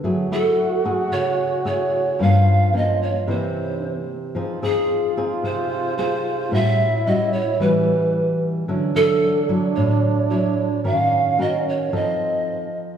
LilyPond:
<<
  \new Staff \with { instrumentName = "Pan flute" } { \time 4/4 \key f \phrygian \tempo 4 = 111 r8 a'4 r8 des''4 des''4 | f''4 ees''8 des''8 c''4. r8 | r8 aes'4 r8 c''4 c''4 | e''4 ees''8 cis''8 b'4. r8 |
r8 a'4 r8 cis''4 cis''4 | f''4 ees''8 des''8 ees''4. r8 | }
  \new Staff \with { instrumentName = "Trombone" } { \time 4/4 \key f \phrygian ges'1 | f'2 e'4. r8 | f'1 | e'2.~ e'8 r8 |
d'1 | des'2 c'4. r8 | }
  \new Staff \with { instrumentName = "Nylon-string guitar" } { \time 4/4 \key f \phrygian << { <a fes' aes'>8 <a fes'>4 <a fes' aes'>4. <a fes' aes'>4 | <f bes des'>4 <f bes des'>8 r8 <e bes des'>4. r8 | <c' ees' aes'>8 <c' ees' aes'>4 <c' ees' aes'>4. <c' ees' aes'>4 | <g cis' fis'>8 r8 <g cis' fis'>8 r8 <g cis' fis'>2 |
<fis cis' e'>8 <fis e'>4 <fis e'>4. <fis e'>8 r8 | <des' ges' bes'>4 <des' ges' bes'>4 <ees' a'>4. r8 | } \\ { ges2 des2 | g,2 c2 | f2 c2 | a,2 e2 |
d2 a,2 | ees2 f2 | } >> }
>>